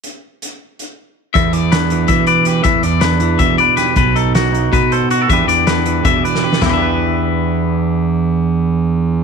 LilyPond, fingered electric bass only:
\new Staff \with { instrumentName = "Fingered electric bass" } { \clef bass \time 7/8 \key e \minor \tempo 4 = 159 r2. r8 | e,2 e4. | e8 e,4. e,8 r4 | b,,2 b,4. |
e,8 e,4. e,8 r4 | e,2.~ e,8~ | e,2.~ e,8 | }